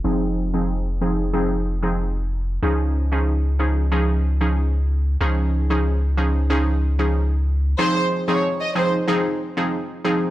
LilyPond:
<<
  \new Staff \with { instrumentName = "Violin section" } { \time 4/4 \key f \minor \tempo 4 = 93 r1 | r1 | r1 | c''8 r16 des''16 r16 ees''16 c''16 r2 r16 | }
  \new Staff \with { instrumentName = "Synth pluck" } { \time 4/4 \key f \minor <f c' ees' aes'>8. <f c' ees' aes'>16 r8 <f c' ees' aes'>16 r16 <f c' ees' aes'>16 r8 <f c' ees' aes'>16 r4 | <f des' ees' aes'>8. <f des' ees' aes'>16 r8 <f des' ees' aes'>16 r16 <f des' ees' aes'>16 r8 <f des' ees' aes'>16 r4 | <f des' ees' aes'>8. <f des' ees' aes'>16 r8 <f des' ees' aes'>16 r16 <f des' ees' aes'>16 r8 <f des' ees' aes'>16 r4 | <f c' ees' aes'>8. <f c' ees' aes'>16 r8 <f c' ees' aes'>16 r16 <f c' ees' aes'>16 r8 <f c' ees' aes'>16 r8 <f c' ees' aes'>16 r16 | }
  \new Staff \with { instrumentName = "Sub bass" } { \clef bass \time 4/4 \key f \minor f,,1 | des,1 | des,1 | r1 | }
>>